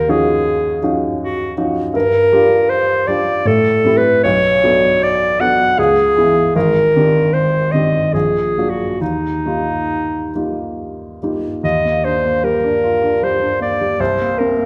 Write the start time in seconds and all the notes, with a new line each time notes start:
Already playing: D#2 A#4
0.08 F3 C#4 D#4 F#4 G#4
0.82 F3 C#4 D#4 F#4
1.22 F#4
1.57 F3 C#4 D#4 F#4
1.94 G2 A#4
2.32 G3 D4 F4 G4
2.69 C5
3.07 G3 D4 F4 G4 D5
3.45 A2 A4
3.85 G3 C4 E4 A4
3.97 B4
4.23 B1 C#5
4.64 F#3 B3 D4 A4
5.03 D5
5.40 F#3 B3 D4 A4 F#5
5.78 C#2 G#4
6.17 E3 B3 E4 G#4
6.56 G#1 A#4
6.96 D#3 C4 D4 G4
7.33 C5
7.72 D#3 C4 D4 G4 D#5
8.14 A#1 G#4
8.57 F#3 A#3 D4 F#4
8.70 F#4
9.01 D#2 D#4
9.46 G3 A#3 D#4 F4
10.35 G3 A#3 D#4 F4
11.23 G3 A#3 D#4 F4
11.63 D#2 D#5
11.85 A#3
12.04 D4 C5
12.25 A#3
12.44 G3 A#4
12.64 D4
12.84 F4
13.02 D4
13.23 G3 C5
13.41 D4
13.61 A#3 D5
13.81 G3
14.00 C2 C5
14.21 A#3
14.38 C4 A#4
14.58 A#3